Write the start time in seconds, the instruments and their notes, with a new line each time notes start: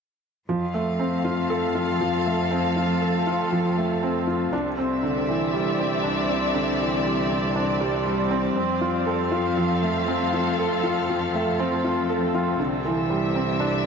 0.49 cello section F2, string section F3, felt piano F3
0.57 string section C4
0.62 string section F5
0.74 felt piano A3
1.00 felt piano C4
1.04 string section A4
1.25 felt piano F4
1.50 felt piano A4
1.75 felt piano F4
2.01 felt piano F3
2.26 felt piano A3
2.51 felt piano C4
2.76 felt piano F4
3.02 felt piano A4
3.27 felt piano F4
3.52 felt piano F3
3.77 felt piano A3
4.03 felt piano C4
4.27 felt piano F4
4.52 cello section C2, string section C3, felt piano D4
4.78 felt piano C4, string section E5
5.00 felt piano D3, string section D5
5.28 felt piano E3
5.53 felt piano G3
5.79 felt piano C4
6.04 felt piano D4
6.29 felt piano C4
6.54 felt piano D3
6.80 felt piano E3
7.05 felt piano G3
7.30 felt piano C4
7.56 felt piano D4
7.81 felt piano G3
8.06 felt piano G3
8.31 felt piano C4
8.56 cello section F2, string section F3, felt piano C4
8.81 felt piano F4
8.92 string section F5
9.03 string section A4, felt piano A4
9.32 felt piano F4
9.57 felt piano F3
9.83 felt piano A3
10.08 felt piano C4
10.33 felt piano F4
10.59 felt piano A4
10.84 felt piano F4
11.09 felt piano F3
11.34 felt piano A3
11.59 felt piano C4
11.84 felt piano F4
12.09 felt piano A4
12.34 felt piano F4
12.59 cello section C2, string section C3, felt piano D3
12.76 string section E5
12.85 felt piano E3
13.10 felt piano G3
13.24 string section D5
13.35 felt piano C4
13.60 felt piano D4